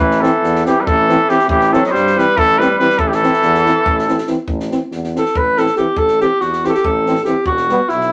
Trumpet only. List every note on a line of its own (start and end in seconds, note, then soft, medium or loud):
0.00 0.23 B4 medium
0.21 0.65 A4 medium
0.66 0.82 G4 medium
0.81 0.87 B4 medium
0.86 1.31 A4 loud
1.30 1.48 G4 medium
1.49 1.74 G4 medium
1.73 1.86 A4 medium
1.86 1.92 D#5 medium
1.91 2.20 C5 medium
2.18 2.39 B4 loud
2.38 2.60 A4 loud
2.58 2.78 B4 medium
2.79 3.00 B4 loud
2.98 3.09 A4 medium
3.08 3.16 G4 medium
3.15 4.28 A4 loud